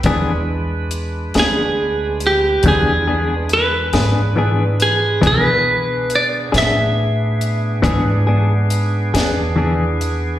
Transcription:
<<
  \new Staff \with { instrumentName = "Clean electric guitar" } { \time 12/8 \key e \phrygian \tempo 4. = 46 r4. gis'4 g'8 gis'4 b'4. gis'8 | b'4 d''8 e''1~ e''8 | }
  \new Staff \with { instrumentName = "Clean electric guitar" } { \time 12/8 \key e \phrygian <e b d' gis'>8 r4 <b d' gis'>8 r4 <e b d' gis'>8 <b d' gis'>8 r8 <b d' gis'>8 <e b d' gis'>8 r8 | <e b d' gis'>8 r4 <b d' gis'>8 r4 <e b d' gis'>8 <b d' gis'>8 r8 <b d' gis'>8 <e b d' gis'>8 r8 | }
  \new Staff \with { instrumentName = "Tonewheel organ" } { \time 12/8 \key e \phrygian <gis d' b'>1. | <b d' gis'>1. | }
  \new Staff \with { instrumentName = "Upright bass" } { \clef bass \time 12/8 \key e \phrygian e,4. d,4. e,4. gis,4. | b,4. a,4. gis,4. e,4. | }
  \new DrumStaff \with { instrumentName = "Drums" } \drummode { \time 12/8 <hh bd>4 hh8 <hh sn>4 hh8 <hh bd>4 hh8 <hh sn>4 hh8 | <hh bd>4 hh8 <hh sn>4 hh8 <hh bd>4 hh8 <hh sn>4 hh8 | }
>>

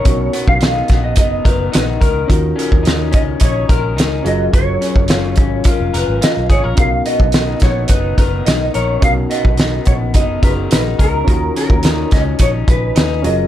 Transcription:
<<
  \new Staff \with { instrumentName = "Clean electric guitar" } { \time 4/4 \key b \lydian \tempo 4 = 107 cis''8. eis''4 dis''16 dis''8 b'8 b'8 ais'8~ | ais'8 ais'4 dis''8 cis''8 ais'4 dis''8 | cis''2 ais'8 b'8 dis''8 cis''8 | eis''8 dis''4 cis''8 b'8 b'8 dis''8 cis''8 |
eis''8 dis''4 cis''8 dis''8 b'8 b'8 ais'8~ | ais'8 ais'4 dis''8 cis''8 b'4 dis''8 | }
  \new Staff \with { instrumentName = "Reed electric piano" } { \time 4/4 \key b \lydian <cis' dis' fis' ais'>1 | <cis' eis' fis' ais'>2.~ <cis' eis' fis' ais'>8 <cis' eis' gis' ais'>8~ | <cis' eis' gis' ais'>2.~ <cis' eis' gis' ais'>8 r8 | <cis' dis' fis' ais'>1 |
<cis' dis' fis' ais'>2~ <cis' dis' fis' ais'>8 <cis' dis' fis' gis'>4. | <cis' eis' fis' ais''>2.~ <cis' eis' fis' ais''>8 <cis' eis' gis' ais'>8 | }
  \new Staff \with { instrumentName = "Clean electric guitar" } { \time 4/4 \key b \lydian <b, b dis' ais'>8 b8 dis'8 b8 dis'8 ais'8 dis'8 ais'8 | dis8 cis'8 dis'8 cis'8 dis'8 ais'8 dis'8 fis8 | fis8 cis'8 eis'8 cis'8 eis'8 ais'8 eis'8 gis'16 ais'16 | b,8 b8 dis'8 b8 dis'8 ais'8 dis'8 ais'8 |
b,8 b8 dis'8 b8 dis'8 ais'8 dis'8 ais'8 | dis8 cis'8 dis'8 cis'8 dis'4 dis'8 fis8 | }
  \new Staff \with { instrumentName = "Fingered electric bass" } { \clef bass \time 4/4 \key b \lydian b,,8 r16 b,,8. ais,,8 fis,,8 fis,,8 ais,,8 cis,8 | dis,8 r16 dis,8. cis,8 ais,,8 ais,,8 cis,8 fis,,8 | fis,,8 r16 fis,,8. gis,,8 r16 eis,,16 eis,,16 gis,,16 r16 b,,16 gis,,16 ais,,16 | r8. b,,8. ais,,8 fis,,8 fis,,8 b,,8 ais,,8 |
b,,8 r16 b,,8. ais,,8 fis,,8 fis,,8 ais,,8 cis,8 | dis,8 r16 dis,8. cis,8 ais,,8 ais,,8 dis,8 fis,,8 | }
  \new DrumStaff \with { instrumentName = "Drums" } \drummode { \time 4/4 <hh bd>8 hh16 bd16 <hh sn>8 <hh bd sn>8 <hh bd>8 <hh bd>8 <hh sn>8 <hh bd>8 | <hh bd>8 hh16 bd16 <hh sn>8 <hh bd>8 <hh bd>8 <hh bd>8 <hh sn>8 hh8 | <hh bd>8 hh16 bd16 <hh sn>8 <hh bd>8 <hh bd>8 hh8 <hh sn>8 <hh bd>8 | <hh bd>8 hh16 bd16 <hh sn>8 <hh bd sn>8 <hh bd>8 <hh bd>8 <hh sn>8 hh8 |
<hh bd>8 hh16 bd16 <hh sn>8 <hh bd>8 <hh bd>8 <hh bd>8 <hh sn>8 <hh bd>8 | <hh bd>8 hh16 bd16 <hh sn>8 <hh bd sn>8 <hh bd>8 <hh bd>8 <hh sn>8 hh8 | }
>>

